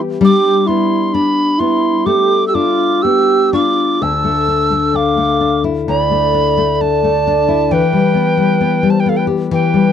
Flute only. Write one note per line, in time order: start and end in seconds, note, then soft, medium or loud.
0.21 0.67 G4 medium
0.66 1.14 E4 medium
1.12 1.59 D4 medium
1.58 2.07 E4 medium
2.05 2.46 G4 medium
2.47 2.55 G4 soft
2.53 3.04 F4 medium
3.02 3.55 G4 medium
3.54 4.03 F4 medium
4.02 4.97 A5 medium
4.95 5.59 F5 medium
5.88 6.75 D5 medium
6.75 6.83 D5 soft
6.83 7.75 D5 medium
7.73 8.92 B4 medium
8.91 9.01 C5 soft
9.00 9.10 B4 soft
9.09 9.20 A4 medium
9.18 9.26 B4 medium
9.53 9.92 B4 medium